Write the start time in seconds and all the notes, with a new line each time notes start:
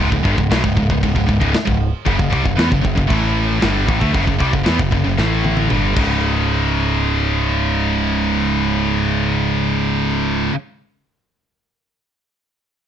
0.00 C#1
0.11 C#1 C#2 G#2, kick
0.23 G1 G2 D3, kick
0.37 C#1 C#2 G#2, kick
0.51 B1 B2 F#3, snare, crash
0.64 C#1 C#2 G#2, kick
0.76 C#1 C#2 G#2, kick
0.90 C#1 C#2 G#2, kick
1.03 C#1 C#2 G#2, kick, crash
1.15 C#1 C#2 G#2, kick
1.26 C#1 C#2 G#2, kick
1.40 C#1 C#2 G#2, kick
1.54 snare, crash
1.66 C#1 C#2 G#2, kick
2.05 F#1 F#2 C#3, kick, crash
2.18 F#1 F#2 C#3, kick
2.30 C2 C3 G3, kick
2.43 F#1 F#2 C#3, kick
2.56 E2 E3 B3, snare, crash
2.69 F#1 F#2 C#3, kick
2.82 F#1 F#2 C#3, kick
2.95 F#1 F#2 C#3, kick
3.07 A1 A2 E3 A3, kick, crash
3.59 G2 D3 G3, snare, crash
3.63 G1
3.86 A1 A2 E3, kick
3.99 D2 D3 A3, kick
4.12 F#1 F#2 C#3, kick, crash
4.25 F#1 F#2 C#3, kick
4.38 C2 C3 G3, kick
4.52 F#1 F#2 C#3, kick
4.64 E3 B3, snare, crash
4.68 E2
4.77 F#1 F#2 C#3, kick
4.91 F#1 F#2 C#3, kick
5.04 F#1 F#2 C#3
5.17 A1 A2 E3 A3, snare
5.44 high tom
5.57 high tom
5.69 G1 G2 D3 G3, mid tom
5.94 C#1 C#2 G#2, kick, crash
5.98 C#3